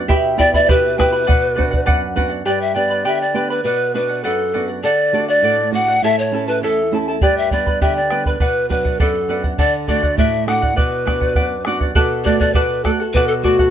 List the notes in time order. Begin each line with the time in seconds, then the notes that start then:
0.08 B2 E4 G4 E5 G5 B5, bombo low
0.37 B3 E4 G4 D5 E5 G5 B5, bombo low
0.54 E4 D5 E5 B5, bombo low
0.68 B2 E4 G4 B4 E5 G5 B5, bombo low
0.98 B3 E4 G4 B4 E5 G5 B5, bombo rim, bombo low
1.12 E4 E5 B5
1.27 B2 B4 D5 F#5, bombo low
1.56 B3 D4 F#4 B4 D5 F#5, bombo low
1.71 D5 F#5, bombo low
1.86 F#2 B4 D5 F#5, bombo low
2.16 B3 D4 F#4 B4 D5 F#5, bombo low
2.30 D5 F#5
2.45 G2 G4 B4 D5 G5 B5
2.61 E5
2.74 B3 D4 G4 B4 D5 G5 B5
2.90 B4 D5 B5
3.05 D3 G4 B4 D5 E5 G5 B5
3.21 D5
3.34 B3 D4 G4 B4 D5 G5 B5
3.50 B4 D5 B5
3.64 B2 B4 D5 F#5
3.94 B3 D4 F#4 B4 D5 F#5
4.09 D5 F#5
4.23 F#2 A4 B4 D5 F#5
4.53 B3 D4 F#4 B4 D5 F#5
4.68 D5 F#5
4.84 D3 A4 D5 F#5
5.13 A3 D4 F#4 A4 D5 F#5
5.28 D5 F#5
5.42 A2 A4 D5 F#5
5.71 A3 D4 F#4 A4 D5 F#5
5.88 D5 F#5
6.02 A2 E4 A4 C#5 E5 A5
6.19 C#5
6.32 A3 C#4 E4 A4 E5 A5
6.47 E4 A4 B4 A5
6.62 E2 E4 A4 C#5 E5 A5
6.92 A3 C#4 E4 A4 E5 A5
7.08 E4 A4 A5
7.21 G2 G4 B4 D5 G5 B5, bombo low
7.37 E5
7.51 G3 B3 D4 B4 D5 G5 B5, bombo low
7.66 B4 D5 B5, bombo low
7.81 D3 G4 B4 D5 E5 G5 B5, bombo low
7.97 D5
8.11 G3 B3 D4 B4 D5 G5 B5, bombo rim
8.26 B4 D5 B5, bombo low
8.40 B2 B4 D5 F#5, bombo low
8.70 F#3 B3 D4 B4 D5 F#5, bombo low
8.85 D5 F#5, bombo low
8.99 F#2 A4 B4 D5 F#5, bombo low
9.28 F#3 B3 D4 B4 D5 F#5
9.44 D5 F#5, bombo low
9.58 D3 A4 D5 F#5, bombo low
9.87 A3 D4 F#4 A4 D5 F#5, bombo low
10.03 D5 F#5, bombo low
10.18 A2 A4 D5 E5 F#5, bombo low
10.47 A3 D4 F#4 A4 D5 F#5, bombo rim
10.62 D5 F#5, bombo low
10.76 B2 B4 D5 F#5, bombo low
11.06 B3 D4 F#4 B4 D5 F#5, bombo rim, bombo low
11.21 D5 F#5, bombo low
11.35 F#2 B4 D5 F#5, bombo low
11.65 B3 D4 F#4 B4 D5 F#5, bombo rim
11.81 D5 F#5, bombo low
11.95 B2 F#4 A4 B4 D5 F#5, bombo low
12.25 A3 F#4 A4 D5 F#5, bombo low
12.39 F#4 A4 D5 F#5, bombo low
12.54 B2 F#4 A4 B4 D5 F#5, bombo low
12.84 A3 F#4 A4 D5 F#5, bombo rim, bombo low
13.00 F#4 A4 F#5
13.14 B2 F#4 A4 B4 D5 F#5, bombo low
13.28 A4
13.42 A3 F#4 A4 D5 F#5, bombo low
13.59 F#4 A4 F#5, bombo low